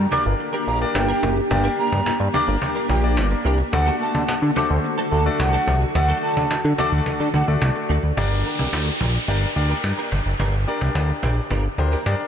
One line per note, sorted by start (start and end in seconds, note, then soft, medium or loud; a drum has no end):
0.00 3.69 A#3 medium
0.00 8.14 D4 medium
0.00 3.69 G4 medium
0.11 0.25 A#3 medium
0.11 0.58 A#3 medium
0.11 0.25 D4 medium
0.11 0.58 D4 medium
0.11 0.58 G4 medium
0.11 0.25 G4 medium
0.11 0.58 A#4 medium
0.11 0.24 A#4 medium
0.11 0.58 D5 medium
0.11 0.23 D6 medium
0.11 cajon bass loud
0.25 0.35 G1 loud
0.25 muted clean electric guitar stroke medium
0.39 muted clean electric guitar stroke soft
0.39 cajon slap medium
0.53 0.65 A#3 medium
0.53 0.66 D4 medium
0.53 0.67 G4 medium
0.53 0.67 A#4 medium
0.67 0.85 A#1 medium
0.67 0.78 A#3 medium
0.67 0.78 D4 medium
0.67 0.78 G4 medium
0.67 0.79 A#4 medium
0.67 0.79 A#5 medium
0.67 cajon slap soft
0.81 1.27 A#3 medium
0.81 1.27 D4 medium
0.81 1.27 G4 medium
0.81 1.27 A#4 medium
0.81 1.27 D5 loud
0.81 muted clean electric guitar stroke medium
0.95 1.13 G1 medium
0.95 1.34 G5 medium
0.95 muted clean electric guitar stroke soft
0.95 cajon slap loud
0.95 cajon slap medium
1.08 1.21 A#3 medium
1.08 1.22 D4 medium
1.08 1.22 G4 medium
1.08 1.23 A#4 medium
1.22 1.41 F#1 loud
1.22 muted clean electric guitar stroke soft
1.22 cajon bass loud
1.36 muted clean electric guitar stroke medium
1.50 1.68 G1 loud
1.50 2.06 A#3 medium
1.50 2.06 D4 medium
1.50 2.06 G4 medium
1.50 2.06 A#4 medium
1.50 2.06 D5 medium
1.50 1.74 G5 loud
1.50 muted clean electric guitar stroke soft
1.50 cajon bass loud
1.64 1.77 A#3 medium
1.64 1.77 D4 medium
1.64 1.78 G4 medium
1.64 1.78 A#4 medium
1.78 1.89 A#3 medium
1.78 1.89 D4 medium
1.78 1.90 G4 medium
1.78 1.90 A#4 medium
1.78 2.18 A#5 medium
1.78 cajon slap soft
1.92 2.01 G2 loud
1.92 cajon bass loud
2.06 2.12 G2 medium
2.06 muted clean electric guitar stroke soft
2.06 cajon slap loud
2.20 2.29 G2 loud
2.20 muted clean electric guitar stroke medium
2.34 2.48 A#3 medium
2.34 2.80 A#3 medium
2.34 2.80 D4 medium
2.34 2.47 D4 medium
2.34 2.80 G4 medium
2.34 2.47 G4 medium
2.34 2.80 A#4 medium
2.34 2.46 A#4 medium
2.34 2.80 D5 loud
2.34 2.46 D6 medium
2.34 cajon bass loud
2.47 2.57 G1 loud
2.47 2.59 A#3 medium
2.47 2.59 D4 medium
2.47 2.59 G4 medium
2.47 2.58 A#4 medium
2.61 muted clean electric guitar stroke medium
2.61 cajon bass loud
2.75 2.87 A#3 medium
2.75 2.87 D4 medium
2.75 2.86 G4 medium
2.75 2.86 A#4 medium
2.89 3.19 A#1 medium
2.89 3.03 A#3 medium
2.89 3.03 D4 medium
2.89 3.03 G4 medium
2.89 3.02 A#4 medium
2.89 3.01 G5 medium
2.89 cajon bass medium
3.03 3.49 A#3 medium
3.03 3.49 D4 medium
3.03 3.49 G4 medium
3.03 3.49 A#4 medium
3.03 3.49 D5 medium
3.03 muted clean electric guitar stroke soft
3.17 3.35 G1 medium
3.17 cajon slap loud
3.17 cajon slap medium
3.31 muted clean electric guitar stroke medium
3.45 3.63 C2 loud
3.45 3.59 A#3 medium
3.45 3.59 D4 medium
3.45 3.58 G4 loud
3.45 3.57 A#4 loud
3.45 cajon slap soft
3.59 muted clean electric guitar stroke medium
3.73 3.90 D2 loud
3.73 8.14 D3 medium
3.73 4.28 A3 medium
3.73 4.28 D4 medium
3.73 4.28 F#4 medium
3.73 8.14 F#4 medium
3.73 8.14 A4 medium
3.73 4.28 A4 medium
3.73 4.28 D5 loud
3.73 3.96 F#5 loud
3.73 muted clean electric guitar stroke soft
3.73 cajon bass loud
3.86 3.99 A3 medium
3.86 4.00 D4 medium
3.86 4.00 F#4 medium
3.86 4.00 A4 loud
4.00 4.11 A3 medium
4.00 4.12 D4 medium
4.00 4.12 F#4 medium
4.00 4.12 A4 medium
4.00 4.40 A5 medium
4.00 cajon slap soft
4.14 4.23 D3 loud
4.14 muted clean electric guitar stroke medium
4.14 cajon bass medium
4.28 4.34 D3 soft
4.28 muted clean electric guitar stroke medium
4.28 cajon slap loud
4.42 4.51 D3 loud
4.42 muted clean electric guitar stroke soft
4.56 4.70 A3 medium
4.56 5.02 A3 medium
4.56 5.02 D4 medium
4.56 4.70 D4 medium
4.56 5.02 F#4 medium
4.56 4.69 F#4 medium
4.56 5.02 A4 medium
4.56 4.69 A4 loud
4.56 5.02 C5 medium
4.56 4.68 D6 medium
4.56 cajon bass loud
4.70 4.79 D2 loud
4.70 muted clean electric guitar stroke soft
4.84 muted clean electric guitar stroke soft
4.84 cajon slap medium
4.98 5.10 A3 medium
4.98 5.11 D4 medium
4.98 5.11 F#4 medium
4.98 5.12 A4 medium
5.12 5.29 D2 medium
5.12 5.23 A3 medium
5.12 5.23 D4 medium
5.12 5.23 F#4 medium
5.12 5.23 A4 medium
5.12 5.23 A5 medium
5.12 cajon slap soft
5.26 5.71 A3 medium
5.26 5.72 D4 medium
5.26 5.72 F#4 medium
5.26 5.72 A4 medium
5.26 5.72 D5 loud
5.40 5.57 C2 loud
5.40 5.79 F#5 medium
5.40 muted clean electric guitar stroke soft
5.40 cajon slap loud
5.40 cajon slap medium
5.53 5.66 A3 medium
5.53 5.66 D4 medium
5.53 5.67 F#4 medium
5.53 5.67 A4 medium
5.67 5.85 C2 loud
5.67 muted clean electric guitar stroke soft
5.67 cajon bass loud
5.81 muted clean electric guitar stroke soft
5.95 6.13 D2 loud
5.95 6.50 A3 medium
5.95 6.50 D4 medium
5.95 6.50 F#4 medium
5.95 6.50 A4 medium
5.95 6.50 D5 medium
5.95 6.18 F#5 medium
5.95 muted clean electric guitar stroke soft
5.95 cajon bass loud
6.09 6.21 A3 medium
6.09 6.22 D4 medium
6.09 6.23 F#4 medium
6.09 6.23 A4 medium
6.23 6.34 A3 medium
6.23 6.34 D4 medium
6.23 6.34 F#4 medium
6.23 6.34 A4 medium
6.23 6.62 A5 medium
6.23 cajon slap soft
6.37 6.46 D3 loud
6.37 muted clean electric guitar stroke medium
6.37 cajon bass loud
6.50 6.56 D3 soft
6.50 muted clean electric guitar stroke soft
6.50 cajon slap loud
6.64 6.73 D3 loud
6.64 muted clean electric guitar stroke soft
6.78 7.24 A3 medium
6.78 6.92 A3 medium
6.78 7.24 D4 medium
6.78 6.92 D4 medium
6.78 7.24 F#4 medium
6.78 6.92 F#4 medium
6.78 7.24 A4 medium
6.78 6.91 A4 medium
6.78 7.24 D5 loud
6.78 6.90 D6 medium
6.78 cajon bass loud
6.92 7.01 D2 medium
6.92 7.04 A3 medium
6.92 7.04 D4 medium
6.92 7.03 F#4 medium
6.92 7.03 A4 medium
7.06 muted clean electric guitar stroke soft
7.06 cajon bass loud
7.20 7.29 D3 medium
7.20 7.32 A3 medium
7.20 7.31 D4 medium
7.20 7.31 F#4 medium
7.20 7.31 A4 medium
7.34 7.43 D2 medium
7.34 7.48 A3 medium
7.34 7.48 D4 medium
7.34 7.47 F#4 medium
7.34 7.47 A4 loud
7.34 7.46 F#5 medium
7.34 cajon bass medium
7.48 7.57 D2 medium
7.48 7.94 A3 medium
7.48 7.94 D4 medium
7.48 7.94 F#4 medium
7.48 7.94 A4 medium
7.48 7.94 D5 loud
7.48 muted clean electric guitar stroke soft
7.62 7.71 C2 loud
7.62 cajon slap loud
7.62 cajon slap medium
7.76 muted clean electric guitar stroke soft
7.89 7.98 D2 loud
7.89 8.03 A3 medium
7.89 8.03 D4 medium
7.89 8.03 F#4 medium
7.89 8.02 A4 medium
8.03 8.12 D2 medium
8.03 muted clean electric guitar stroke soft
8.17 8.44 G1 loud
8.17 8.31 A#3 medium
8.17 8.91 D4 medium
8.17 8.31 D4 medium
8.17 8.91 G4 medium
8.17 8.32 G4 medium
8.17 8.91 A#4 medium
8.17 8.32 A#4 medium
8.17 8.91 D5 loud
8.17 cajon bass loud
8.17 downlifter medium
8.44 8.56 A#3 medium
8.44 8.56 D4 medium
8.44 8.56 G4 medium
8.44 8.56 A#4 medium
8.44 cajon slap soft
8.59 8.68 C2 medium
8.59 8.71 A#3 medium
8.59 8.70 D4 medium
8.59 8.70 G4 medium
8.59 8.70 A#4 medium
8.59 cajon bass medium
8.73 8.90 D2 loud
8.73 cajon slap loud
8.73 cajon slap medium
8.87 muted clean electric guitar stroke soft
9.00 9.18 A#1 medium
9.00 9.14 A#3 medium
9.00 9.15 D4 medium
9.00 9.14 G4 medium
9.00 9.13 A#4 medium
9.00 cajon bass loud
9.15 muted clean electric guitar stroke medium
9.28 9.46 G1 medium
9.28 9.42 A#3 medium
9.28 9.47 D4 loud
9.28 9.42 D4 medium
9.28 9.47 G4 medium
9.28 9.42 G4 medium
9.28 9.47 A#4 medium
9.28 9.41 A#4 medium
9.28 9.47 D5 loud
9.28 cajon slap medium
9.42 muted clean electric guitar stroke medium
9.56 9.74 D2 medium
9.56 10.29 D4 medium
9.56 10.29 G4 medium
9.56 10.29 A#4 medium
9.56 10.30 D5 loud
9.56 muted clean electric guitar stroke soft
9.56 cajon slap soft
9.70 9.82 A#3 medium
9.70 9.81 D4 medium
9.70 9.81 G4 medium
9.70 9.81 A#4 medium
9.84 9.93 G2 loud
9.84 muted clean electric guitar stroke soft
9.84 cajon slap loud
9.84 cajon slap medium
9.98 10.11 A#3 medium
9.98 10.11 D4 medium
9.98 10.11 G4 medium
9.98 10.12 A#4 medium
10.12 10.21 G1 loud
10.12 cajon bass medium
10.26 10.34 F#1 medium
10.26 muted clean electric guitar stroke soft
10.39 10.66 G1 loud
10.39 10.53 A#3 medium
10.39 10.54 D4 medium
10.39 10.54 G4 medium
10.39 10.54 A#4 medium
10.39 cajon bass loud
10.67 10.78 A#3 medium
10.67 11.41 D4 medium
10.67 10.78 D4 medium
10.67 11.41 G4 medium
10.67 10.79 G4 medium
10.67 11.41 A#4 medium
10.67 10.79 A#4 medium
10.67 11.41 D5 loud
10.67 cajon slap soft
10.81 10.90 C2 medium
10.81 10.93 A#3 soft
10.81 10.93 D4 medium
10.81 10.92 G4 medium
10.81 10.92 A#4 medium
10.81 cajon bass medium
10.95 11.12 D2 medium
10.95 cajon slap loud
10.95 cajon slap medium
11.09 muted clean electric guitar stroke medium
11.23 11.40 A#1 medium
11.23 11.37 A#3 medium
11.23 11.37 D4 medium
11.23 11.36 G4 medium
11.23 11.35 A#4 medium
11.23 cajon bass loud
11.37 muted clean electric guitar stroke soft
11.50 11.68 G1 medium
11.50 11.64 A#3 medium
11.50 11.64 D4 medium
11.50 11.64 G4 medium
11.50 11.63 A#4 medium
11.50 cajon bass loud
11.64 muted clean electric guitar stroke soft
11.78 11.96 D2 loud
11.78 11.97 D4 medium
11.78 11.97 G4 medium
11.78 11.97 A#4 medium
11.78 11.97 C5 loud
11.78 muted clean electric guitar stroke soft
11.78 cajon bass medium
11.92 12.04 A#3 medium
11.92 12.04 D4 medium
11.92 12.03 G4 medium
11.92 12.03 A#4 medium
12.06 12.15 G2 loud
12.06 12.27 D4 medium
12.06 12.27 G4 medium
12.06 12.27 A#4 medium
12.06 12.27 D5 loud
12.06 cajon slap loud
12.06 cajon slap medium
12.20 muted clean electric guitar stroke soft